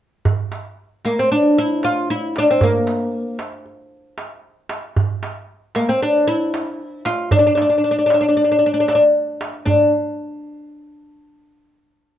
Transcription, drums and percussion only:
0.25 darbuka dum
0.52 darbuka tek
1.05 darbuka tek
1.18 darbuka ka
1.31 darbuka ka
1.83 darbuka tek
2.36 darbuka tek
2.61 darbuka dum
2.87 darbuka tek
3.39 darbuka tek
3.52 darbuka ka
3.66 darbuka ka
4.18 darbuka tek
4.69 darbuka tek
4.96 darbuka dum
5.23 darbuka tek
5.75 darbuka tek
5.88 darbuka ka
6.01 darbuka ka
6.54 darbuka tek
7.05 darbuka tek
7.31 darbuka dum
7.57 darbuka tek
8.10 darbuka tek
8.23 darbuka ka
8.36 darbuka ka
8.62 darbuka ka
8.88 darbuka tek
9.41 darbuka tek
9.67 darbuka dum

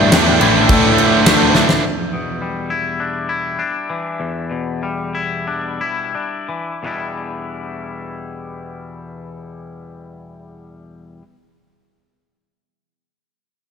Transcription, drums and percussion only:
0.12 snare, crash
0.41 crash
0.69 kick, crash
0.98 crash
1.26 snare, crash
1.55 snare
1.69 snare

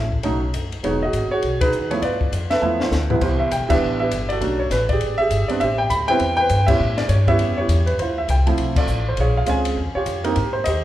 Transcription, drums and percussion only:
0.12 kick
0.23 ride
0.54 hi-hat pedal, ride
0.72 ride
0.84 ride
1.13 hi-hat pedal, ride
1.42 ride
1.61 kick, ride
1.72 hi-hat pedal
1.91 ride
2.02 ride
2.21 kick
2.33 hi-hat pedal, ride
2.51 snare, ride
2.80 snare
2.92 snare, hi-hat pedal
3.10 floor tom
3.21 kick, crash
3.51 hi-hat pedal, ride
3.70 kick, crash
4.11 hi-hat pedal, ride
4.30 ride
4.41 ride
4.71 snare, hi-hat pedal, ride
4.89 kick, ride
5.01 ride
5.31 hi-hat pedal, ride
5.49 ride
5.61 ride
5.90 hi-hat pedal, ride
6.08 ride
6.20 ride
6.49 hi-hat pedal, ride
6.68 kick, crash
6.98 snare, ride
7.09 hi-hat pedal, ride
7.27 kick, ride
7.39 ride
7.69 hi-hat pedal, ride
7.87 ride
7.99 ride
8.29 hi-hat pedal, ride
8.47 ride
8.58 ride
8.76 kick, crash
8.87 hi-hat pedal
9.17 ride
9.46 hi-hat pedal, ride
9.65 ride
10.06 hi-hat pedal, ride
10.24 ride
10.36 ride
10.65 hi-hat pedal, ride

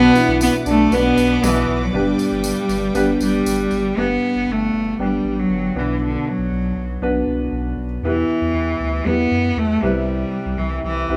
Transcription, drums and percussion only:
0.15 tambourine
0.41 tambourine
0.66 tambourine
0.92 tambourine
1.18 tambourine
1.44 tambourine
2.19 tambourine
2.44 tambourine
2.69 tambourine
2.95 tambourine
3.20 tambourine
3.46 tambourine
3.71 tambourine

